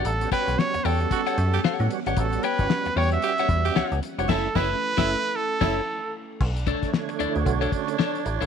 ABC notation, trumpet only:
X:1
M:4/4
L:1/16
Q:"Swing 16ths" 1/4=113
K:Bm
V:1 name="Trumpet"
A2 B2 c2 A8 z2 | A2 B4 c e6 z3 | A2 B6 A6 z2 | z16 |]